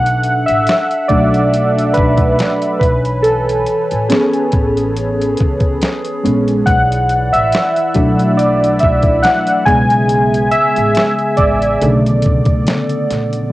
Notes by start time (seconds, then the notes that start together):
Already playing: B1 D4 A4 E5 F#5
0.06 closed hi-hat
0.23 closed hi-hat
0.46 A1 E5, closed hi-hat
0.67 snare, closed hi-hat
0.91 closed hi-hat
1.08 B1 F#3 A3 D4 D5, kick, closed hi-hat
1.34 closed hi-hat
1.54 closed hi-hat
1.78 closed hi-hat
1.94 B4, kick, closed hi-hat
1.98 B1
2.17 kick, closed hi-hat
2.39 snare, closed hi-hat
2.62 closed hi-hat
2.79 B1 E3 B4 C#5 G#5, kick, closed hi-hat
3.05 closed hi-hat
3.23 A4, closed hi-hat
3.49 closed hi-hat
3.66 closed hi-hat
3.91 A1, closed hi-hat
4.09 B3 C#4 G#4, snare, closed hi-hat
4.34 closed hi-hat
4.52 A1 G#4, kick, closed hi-hat
4.77 closed hi-hat
4.96 closed hi-hat
5.21 closed hi-hat
5.37 C#2, kick, closed hi-hat
5.60 kick, closed hi-hat
5.81 snare, closed hi-hat
6.04 closed hi-hat
6.23 A#1 G#3 B3 C#4, closed hi-hat
6.48 closed hi-hat
6.66 B1 E4 D5 F#5, kick, closed hi-hat
6.92 closed hi-hat
7.09 closed hi-hat
7.33 A1 E5, closed hi-hat
7.52 snare, closed hi-hat
7.76 closed hi-hat
7.94 B1 F#3 A3 D4, kick, closed hi-hat
8.19 closed hi-hat
8.37 D5, closed hi-hat
8.64 closed hi-hat
8.79 E5, kick, closed hi-hat
8.84 B1
9.03 kick, closed hi-hat
9.23 F#5, snare, closed hi-hat
9.47 closed hi-hat
9.66 B1 C#3 G#3 B3 G#4 E5 G#5, kick, closed hi-hat
9.90 closed hi-hat
10.09 closed hi-hat
10.34 closed hi-hat
10.51 E5, closed hi-hat
10.76 A1, closed hi-hat
10.95 snare, closed hi-hat
11.19 closed hi-hat
11.37 A1 D5, kick, closed hi-hat
11.62 closed hi-hat
11.81 B1 C#3 D3 A3 B3 A4 D5, closed hi-hat
12.06 closed hi-hat
12.22 kick, closed hi-hat
12.27 B1
12.45 kick, closed hi-hat
12.67 snare, closed hi-hat
12.89 closed hi-hat
13.10 A#1, snare, closed hi-hat
13.33 closed hi-hat